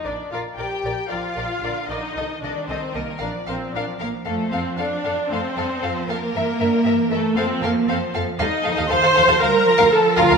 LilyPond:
<<
  \new Staff \with { instrumentName = "Violin section" } { \time 4/4 \key bes \major \tempo 4 = 116 d''8 f''8 g''4 f''4. ees''8~ | ees''8 d''8 c''8 bes'8 d''8 c''8 d''8 bes'8 | a'8 c''8 d''4 c''4. bes'8~ | bes'4. a'8 c''8 bes'8 c''8 r8 |
ees''4 c'''4 bes''4 a''8 f''8 | }
  \new Staff \with { instrumentName = "Violin section" } { \time 4/4 \key bes \major <bes' d''>8 <bes' d''>8 <bes' d''>8 <bes' d''>8 <bes' d''>8 <bes' d''>8 <bes' d''>8 <bes' d''>8 | <a' ees''>8 <a' ees''>8 <a' ees''>8 <a' ees''>8 <bes' f''>8 <bes' f''>8 <bes' f''>8 <bes' f''>8 | <a' f''>8 <a' f''>8 <a' f''>8 <a' f''>8 <a' f''>8 <a' f''>8 <a' f''>8 <a' f''>8 | <bes' e''>8 <bes' e''>8 <bes' e''>8 <bes' e''>8 <a' f''>8 <a' f''>8 <a' f''>8 <a' f''>8 |
<a' f''>16 r16 <a' f''>16 <a' f''>16 <a' f''>16 <a' f''>16 <a' f''>16 <a' f''>16 <bes' f''>16 r8 <bes' f''>16 r8 <bes' f''>16 <bes' f''>16 | }
  \new Staff \with { instrumentName = "Viola section" } { \time 4/4 \key bes \major d'8 f'8 g'4 f'4. ees'8~ | ees'8 d'8 c'8 bes8 d'8 c'8 d'8 bes8 | a8 c'8 d'4 c'4. bes8~ | bes4. a8 c'8 bes8 c'8 r8 |
ees'4 c''4 bes'4 a'8 f'8 | }
  \new Staff \with { instrumentName = "Cello section" } { \clef bass \time 4/4 \key bes \major r2 f4 d4 | ees2 f2 | f2 a8 g8 f4 | e8 d8 e4 f2 |
g8 f8 ees8 f8 g8 f8 f4 | }
  \new Staff \with { instrumentName = "Double bass section" } { \clef bass \time 4/4 \key bes \major bes,,8 bes,,8 bes,,8 bes,,8 bes,,8 bes,,8 bes,,8 bes,,8 | c,8 c,8 c,8 c,8 bes,,8 bes,,8 bes,,8 bes,,8 | f,8 f,8 f,8 f,8 f,8 f,8 f,8 f,8 | g,8 g,8 g,8 g,8 f,8 f,8 f,8 f,8 |
ees,16 r16 ees,16 ees,16 ees,16 ees,16 ees,16 ees,16 d,16 r8 d,16 r8 d,16 d,16 | }
>>